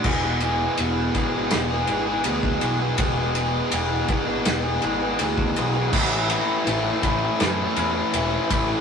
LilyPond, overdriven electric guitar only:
\new Staff \with { instrumentName = "Overdriven electric guitar" } { \time 4/4 \key a \major \tempo 4 = 82 <e, b, e gis b gis'>16 <e gis b gis'>16 <e gis b gis'>8 <e, b, e gis b gis'>8 <e gis b gis'>16 <e gis b gis'>8 <e gis b gis'>16 <e gis b gis'>16 <e gis b gis'>16 <e, b, e gis b gis'>8 <e gis b gis'>16 <e gis b gis'>16 | <e, b, e gis b gis'>16 <e gis b gis'>16 <e gis b gis'>8 <e, b, e gis b gis'>8 <e gis b gis'>16 <e gis b gis'>8 <e gis b gis'>16 <e gis b gis'>16 <e gis b gis'>16 <e, b, e gis b gis'>8 <e gis b gis'>16 <e gis b gis'>16 | <a, e a cis' e'>8 <a cis' e'>8 <e a cis' e'>8 <a cis' e'>8 <a, e a cis' e'>8 <a cis' e'>8 <e a cis' e'>8 <a cis' e'>8 | }